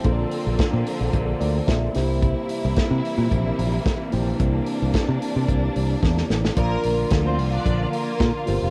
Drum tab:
HH |x-o-x-o-x-o-x-o-|x-o-x-o-x-o-x-o-|x-o-x-o-x-o-----|x-o-x-o-x-o-x-o-|
SD |----o-------o-o-|----o-------o---|----o-------oooo|----o-------o---|
BD |o---o---o---o---|o---o---o---o---|o---o---o---o---|o---o---o---o---|